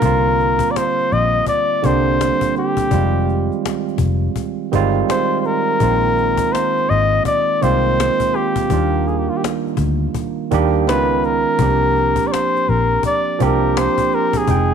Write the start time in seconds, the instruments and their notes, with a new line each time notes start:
Already playing: flugelhorn A#4
0.02 fingered electric bass C2, tine electric piano D3 G3 A#3 C4 F4, cajon bass
0.40 cajon slap
0.59 cajon bass
0.71 flugelhorn D5
0.76 flugelhorn C5, cajon slap
0.99 cajon slap
1.12 fingered electric bass A#1, flugelhorn D#5, cajon slap
1.47 flugelhorn D5, cajon bass
1.83 fingered electric bass C2, tine electric piano D3 G3 A#3 C4 D4, flugelhorn C5, cajon bass
2.21 cajon slap
2.41 cajon bass
2.56 flugelhorn G4, cajon slap
2.77 cajon bass
2.90 fingered electric bass F1, tine electric piano D#3 G3 G#3 C4 F4, cajon bass
3.29 cajon slap
3.52 cajon slap
3.66 cajon slap
3.88 cajon slap
3.98 fingered electric bass F1, cajon bass
4.36 cajon bass
4.72 fingered electric bass G1, tine electric piano D#3 G3 G#3 C4 F4, cajon bass
5.10 flugelhorn C5, cajon slap
5.41 flugelhorn C5, cajon slap
5.46 flugelhorn A#4
5.80 fingered electric bass A#1, tine electric piano D#3 G#3 A#3 C4 F4, cajon bass
6.18 cajon slap
6.38 cajon bass
6.53 flugelhorn C5, cajon slap
6.78 cajon slap
6.89 fingered electric bass G#1, flugelhorn D#5, cajon slap
7.25 flugelhorn D5, cajon bass
7.61 fingered electric bass C2, tine electric piano D#3 G#3 A#3 C4 F4, flugelhorn C5, cajon bass
8.00 cajon slap
8.20 cajon bass
8.34 flugelhorn G4, cajon slap
8.56 cajon bass
8.70 fingered electric bass D#2, tine electric piano D#3 G3 A#3 D4 F4, cajon bass
9.07 flugelhorn G#4, cajon slap
9.18 flugelhorn G4
9.30 flugelhorn F4
9.37 flugelhorn G4
9.44 cajon slap
9.67 cajon slap
9.77 fingered electric bass D2, cajon bass
10.14 cajon bass
10.51 fingered electric bass D#2, tine electric piano D#3 G3 A#3 D4 G4, cajon bass
10.87 fingered electric bass C#2, tine electric piano D#3 G#3 B3 C#4 F4, flugelhorn B4, cajon slap
11.23 flugelhorn A#4, cajon slap
11.59 fingered electric bass C2, tine electric piano F3 A#3 C4 D4 G4, cajon bass
11.97 cajon slap
12.16 cajon bass
12.27 flugelhorn D5
12.32 flugelhorn C5, cajon slap
12.56 cajon slap
12.69 fingered electric bass A#1, flugelhorn A#4, cajon slap
13.03 flugelhorn D5, cajon bass
13.39 fingered electric bass C2, tine electric piano F3 A#3 C4 D4 G4, cajon bass
13.43 flugelhorn A#4
13.77 flugelhorn C5, cajon slap
13.98 cajon bass
14.14 flugelhorn A#4
14.33 cajon bass
14.37 flugelhorn G#4
14.47 fingered electric bass F1, tine electric piano F3 G#3 C4 D#4 G5, cajon bass